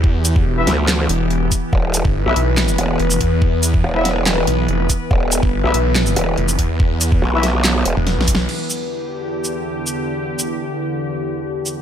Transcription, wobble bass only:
X:1
M:4/4
L:1/16
Q:1/4=142
K:Em
V:1 name="Wobble bass" clef=bass
z6 D,,4 z6 | E,,,3 z2 B,,, z4 E,,,2 z4 | z4 E,,,6 z6 | E,,,3 z2 B,,, z4 E,,,2 z4 |
z4 B,,,6 E,,, z4 z | z16 | z16 |]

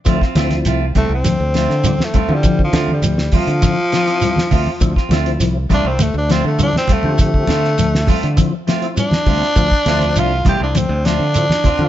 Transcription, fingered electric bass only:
X:1
M:4/4
L:1/16
Q:1/4=101
K:Dm
V:1 name="Fingered electric bass" clef=bass
D,, z D,,2 C,,2 C,, C,, D,, D,,2 D,2 z2 D,- | D,2 D,2 D,,2 z D,2 z4 z D,, z | D,, z D,,2 C,,2 C,, C,, D,, D,,2 D,2 z2 D,- | D,2 D,2 D,,2 z D,2 z4 z D,, z |
D,, z D,,2 C,,2 C,, C,, D,, D,,2 D,2 z2 D, |]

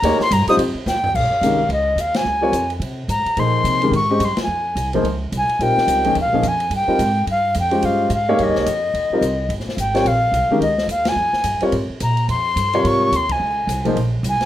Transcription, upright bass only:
X:1
M:4/4
L:1/8
Q:"Swing" 1/4=215
K:Bbdor
V:1 name="Upright bass" clef=bass
E,, z G,, z F,, z E,,2 | B,,, z C,,2 D,,2 E,,2 | D,,2 F,,2 C,2 A,, z | B,,2 C,2 A,,2 G,, z |
F,,2 C,,2 D,,2 C,, z | B,,, z D,,2 (3E,, C,, B,,, F,,2 | G,, z A,,2 G,,2 F,,2 | G,,2 A,,2 (3G,, E,, C,, F,,2 |
E,, z C,,2 G,,, z A,,,2 | B,,,2 C,, z D,,2 E,,2 | F,, z (3G,, F,, D,, A,, z B,,2 | F,,2 G,,2 A,,2 E,,2 |
D,,2 C,,2 B,,,2 C,, z |]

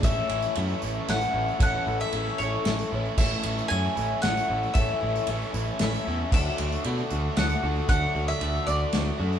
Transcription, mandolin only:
X:1
M:3/4
L:1/16
Q:1/4=115
K:A
V:1 name="Mandolin"
e8 f4 | f3 e3 c4 z2 | e4 g4 f4 | e6 z2 e3 z |
e8 f4 | f3 e3 d4 z2 |]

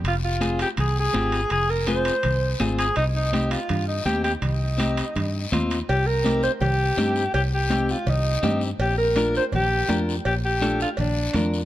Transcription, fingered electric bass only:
X:1
M:4/4
L:1/8
Q:1/4=165
K:Cm
V:1 name="Fingered electric bass" clef=bass
F,,,4 C,,2 A,,,2 | F,,,4 C,,2 A,,,2 | C,,4 G,,2 E,,2 | C,,4 G,,2 E,,2 |
[K:Cdor] C,,4 C,,2 G,,2 | C,,4 C,,2 G,,2 | B,,,4 B,,,2 F,,2 | B,,,4 B,,,2 F,,2 |]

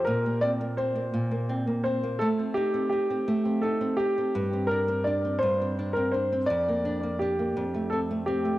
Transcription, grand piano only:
X:1
M:6/8
L:1/16
Q:3/8=56
K:Bb
V:1 name="Grand piano"
B2 d2 c6 c2 | A2 G2 G4 A2 G2- | G2 B2 d2 c3 B c2 | d4 G4 A2 G2 |]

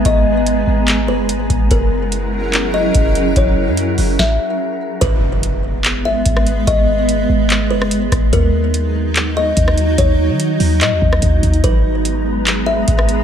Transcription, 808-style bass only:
X:1
M:4/4
L:1/16
Q:1/4=145
K:G#m
V:1 name="808-style bass" clef=bass
G,,,6 G,,,4 F,,,2 G,,,2 G,,,2 | F,,,12 F,,,4 | F,,,3 F,,3 F,,,2 z8 | G,,,12 G,,,4 |
G,,,6 G,,,4 F,,,2 G,,,2 G,,,2 | D,,12 D,,4 | D,,3 D,3 D,,2 A,, D,, D,,2 D,,2 D,,2 | G,,,12 G,,,4 |]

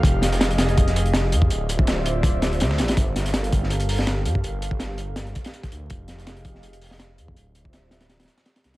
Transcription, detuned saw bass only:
X:1
M:4/4
L:1/8
Q:"Swing 16ths" 1/4=164
K:F
V:1 name="Detuned saw bass" clef=bass
F,,,6- F,,, F,, | D,,,6 D,, A,,, | G,,,6- G,,, G,, | G,,,4- G,,, z2 D,, |
F,,,6- F,,, F,, | D,,,4- D,,, z2 C,, |]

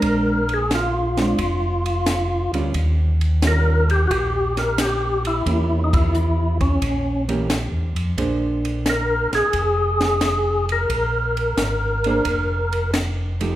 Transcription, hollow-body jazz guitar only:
X:1
M:4/4
L:1/8
Q:"Swing" 1/4=88
K:Bbmix
V:1 name="Hollow-body jazz guitar"
[A,CD] z2 [A,CD] z3 [G,_DF] | z2 [E,G,_DF] z4 z | [=E,B,^CG]3 z2 [E,B,CG] z2 | [B,DAc]4- [B,DAc] z3 |
z3 [B,DAc] z3 [F,=A,EG] |]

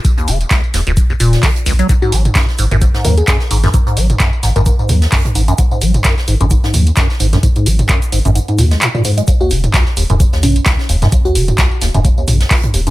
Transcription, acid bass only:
X:1
M:4/4
L:1/16
Q:"Swing 16ths" 1/4=130
K:Abdor
V:1 name="Acid bass" clef=bass
z E,, D, z D,, z E,, D,, z E,, B,,2 E, z D,, G, | A,, A,, G, z G,, z A,, G,, A,, A,, G, z G,, z A,, G,, | A,, A,, G, z G,, z A,, G,, A,, A,, G, z G,, z A,, G,, | A,, A,, G, z G,, z A,, G,, A,, A,, G, z G,, z A,, G,, |
A,, A,, G, z G,, z A,, G,, A,, A,, C, A, A,, B,, A,, A, | E,, E,, D, z D,, z E,, G,, E,, E,, D, z D,, z E,, G,, | E,, E,, D, z D,, z E,, G,, E,, E,, D, z D,, z E,, G,, |]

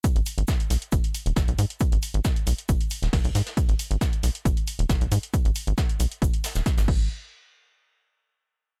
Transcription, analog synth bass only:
X:1
M:4/4
L:1/16
Q:1/4=136
K:G#m
V:1 name="Analog synth bass" clef=bass
z G,,, z G,,, z2 B,,, z G,,, z2 D,,, G,,, B,,, G,, z | z G,,, z G,,, z2 B,,, z G,,, z2 D,,, G,,, B,,, G,, z | z G,,, z G,,, z2 B,,, z G,,, z2 D,,, G,,, B,,, G,, z | z G,,, z G,,, z2 B,,, z G,,, z2 D,,, z G,,, G,,,2 |
z16 |]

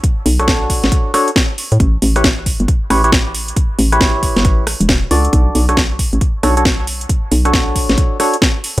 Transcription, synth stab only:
X:1
M:4/4
L:1/16
Q:"Swing 16ths" 1/4=136
K:Bm
V:1 name="Synth stab"
z3 [DFAc]6- [DFAc] [DFAc] z4 z | z3 [EGBc] z6 [EGBc] [EGBc] z4 | z3 [EGBc]6- [EGBc] z4 [DFAd]2- | [DFAd]3 [DFAc] z6 [DFAc] [DFAc] z4 |
z3 [DFAc]6- [DFAc] [DFAc] z4 z |]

